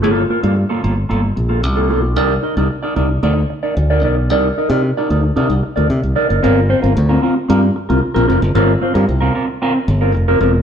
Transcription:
<<
  \new Staff \with { instrumentName = "Clean electric guitar" } { \time 4/4 \key g \minor \tempo 4 = 113 <bes f' a'>16 r16 <bes f' bes'>16 <bes f' a'>16 r16 <bes f' a'>16 <bes f' a'>16 r16 <bes f' a'>16 r8 <bes f' a'>16 r16 <bes f' a'>16 <bes f' a'>16 r16 | <ees' bes' d''>16 r16 <ees' bes' ees''>16 <ees' bes' d''>16 r16 <ees' bes' d''>16 <ees' bes' d''>16 r16 <ees' bes' d''>16 r8 <ees' bes' d''>16 r16 <ees' bes' d''>16 <ees' bes' d''>16 r16 | <ees' bes' d''>16 r16 <ees' bes' ees''>16 <ees' bes' d''>16 r16 <ees' bes' d''>16 <ees' bes' d''>16 r16 <ees' bes' d''>16 r8 <ees' bes' d''>16 r8 <ees' bes' d''>16 <ees' bes'>16 | <c' f' bes'>16 r16 <c' f' c''>16 <c' f' bes'>16 r16 <c' f' bes'>16 <c' f' bes'>16 r16 <c' f' bes'>16 r8 <c' f' bes'>16 r16 <c' f' bes'>16 <c' f' bes'>16 r16 |
<c' f' bes'>16 r16 <c' f' c''>16 <c' f' bes'>16 r16 <c' f' bes'>16 <c' f' bes'>16 r16 <c' f' bes'>16 r8 <c' f' bes'>16 r16 <c' f' bes'>16 <c' f' bes'>16 r16 | }
  \new Staff \with { instrumentName = "Fingered electric bass" } { \clef bass \time 4/4 \key g \minor g,,8 r16 g,8 r16 g,,8 g,,8 bes,,8 c,8 b,,8 | c,8 r16 c,16 r8 c,8 d,8 r8 d,8 b,,8 | c,8 r16 c8 r16 d,8 c16 c,16 r16 d,16 c16 c,16 r16 fis,,16 | g,,8. g,,16 d,8 r8 g,8 r16 c,16 r16 bes,,16 f,,16 fis,,16 |
g,,8 r16 g,16 c,8 r4 g,,8 f,,8 e,,8 | }
>>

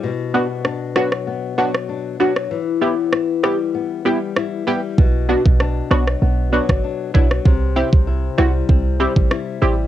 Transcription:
<<
  \new Staff \with { instrumentName = "Synth stab" } { \time 4/4 \key b \phrygian \tempo 4 = 97 r8 <b d' fis'>8 r8 <b d' fis'>8 r8 <b d' fis'>8 r8 <b d' fis'>8 | r8 <b e' g'>8 r8 <b e' g'>8 r8 <b e' g'>8 r8 <b e' g'>8 | r8 <b d' fis'>8 r8 <b d' fis'>8 r8 <b d' fis'>8 r8 <b d' e'>8 | r8 <c' e' g'>8 r8 <c' e' fis'>8 r8 <c' e' g'>8 r8 <c' e' g'>8 | }
  \new Staff \with { instrumentName = "Nylon-string guitar" } { \time 4/4 \key b \phrygian b,8 b8 d'8 fis8 b8 fis8 d'8 fis8 | e8 b8 e'8 g8 b8 g8 e'8 g8 | b,8 b8 d'8 fis8 b8 fis8 d'8 fis8 | c8 c'8 e'8 g8 c'8 g8 e'8 g8 | }
  \new Staff \with { instrumentName = "808-style bass" } { \clef bass \time 4/4 \key b \phrygian r1 | r1 | b,,8. b,,8. b,,8 b,,8. g,,16 r8 b,,8 | c,8. c,8. c,8 c,8. a,,16 r8 a,,8 | }
  \new DrumStaff \with { instrumentName = "Drums" } \drummode { \time 4/4 r4 ss8 ss16 ss16 r8. ss16 r8. ss16 | r4 ss8 ss8 r4 ss4 | bd8. bd16 ss8 ss16 ss16 r8. <bd ss>16 r8 bd16 ss16 | bd8. bd16 r8 ss8 bd8. bd16 ss4 | }
>>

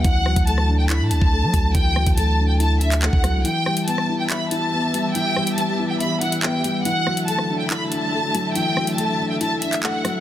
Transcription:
<<
  \new Staff \with { instrumentName = "Violin section" } { \time 4/4 \key d \mixolydian \tempo 4 = 141 fis''4 a''8. g''16 b''8 a''4. | g''4 a''8. g''16 a''8 e''8 fis''4 | g''4 a''8. g''16 b''8 a''4. | g''4 a''8. g''16 b''8 fis''8 g''4 |
fis''4 a''8. g''16 b''8 a''4. | g''4 a''8. g''16 a''8 e''8 fis''4 | }
  \new Staff \with { instrumentName = "String section" } { \time 4/4 \key d \mixolydian r1 | r1 | <e b g' e''>1~ | <e b g' e''>1 |
<d fis a e''>1~ | <d fis a e''>1 | }
  \new Staff \with { instrumentName = "Felt piano" } { \time 4/4 \key d \mixolydian e8 fis8 a8 d'8 e'8 d'8 a8 fis8 | e8 fis8 a8 d'8 e'8 d'8 a8 fis8 | e8 g8 b8 e'8 e''8 e'8 b8 g8 | e8 g8 b8 e'8 e''8 e'8 b8 g8 |
e8 fis8 a8 d'8 e'8 d'8 a8 fis8 | e8 fis8 a8 d'8 e'8 d'8 a8 fis8 | }
  \new Staff \with { instrumentName = "808-style bass" } { \clef bass \time 4/4 \key d \mixolydian d,8. d,4. a,16 d,16 d,8 fis16 d,8 | d,8. d,16 d,2~ d,16 d,8 c,16 | r1 | r1 |
r1 | r1 | }
  \new DrumStaff \with { instrumentName = "Drums" } \drummode { \time 4/4 <hh bd>8 ss16 <hh bd>16 hh16 ss8. <hc hh>8 hh16 bd16 r8 <hh bd>8 | <hh bd>8 ss16 <hh bd>16 hh4 hh8 hh16 <hc hh>16 hc16 bd16 <hh ss>8 | hh8 ss16 hh16 hh16 ss8. <hc hh>8 hh8 r8 hh8 | hh8 ss16 hh16 hh4 hh8 hh16 hh16 hc8 hh8 |
hh8 ss16 hh16 hh16 ss8. <hc hh>8 hh8 r8 hh8 | hh8 ss16 hh16 hh4 hh8 hh16 <hc hh>16 hc8 <hh ss>8 | }
>>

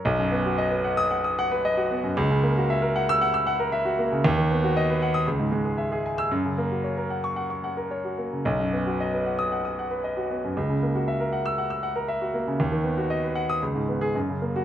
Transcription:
\new Staff \with { instrumentName = "Grand piano" } { \time 4/4 \key b \major \tempo 4 = 115 << { r4. r16 dis'''8 r4. r16 | r4. r16 e'''8 r4. r16 | r4. r16 dis'''16 r4. r16 e'''16 | r4. r16 cis'''8 r4. r16 |
r4. r16 dis'''8 r4. r16 | r4. r16 e'''8 r4. r16 | r4. r16 dis'''16 r8. gis'16 r8. fis'16 | } \\ { b,,16 fis,16 b16 fis'16 dis''16 b'16 fis''8 fis''16 dis'''16 fis''16 b'16 dis''16 fis'16 b16 fis,16 | cis,16 cis16 ais16 fis'16 e''16 ais'16 fis''8 fis''16 e'''16 fis''16 ais'16 e''16 fis'16 ais16 cis16 | dis,16 dis16 b16 fis'16 dis''16 b'16 fis''8 cis,16 gis,16 gis16 gis'16 e''16 gis'16 gis''8 | fis,16 cis16 ais16 fis'16 cis''16 ais'16 fis''8 fis''16 cis'''16 fis''16 ais'16 cis''16 fis'16 ais16 cis16 |
b,,16 fis,16 b16 fis'16 dis''16 b'16 fis''8 fis''16 dis'''16 fis''16 b'16 dis''16 fis'16 b16 fis,16 | cis,16 cis16 ais16 fis'16 e''16 ais'16 fis''8 fis''16 e'''16 fis''16 ais'16 e''16 fis'16 ais16 cis16 | dis,16 dis16 b16 fis'16 dis''16 b'16 fis''8 cis,16 gis,16 b8 fis,16 cis16 ais8 | } >> }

